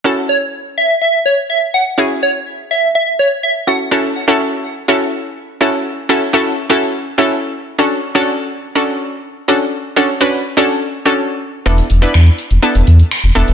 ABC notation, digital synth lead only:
X:1
M:4/4
L:1/16
Q:1/4=124
K:F#m
V:1 name="Digital synth lead"
z2 c z3 e2 e2 c z e z f z | z2 c z3 e2 e2 c z e z f z | z16 | z16 |
z16 | z16 | z16 |]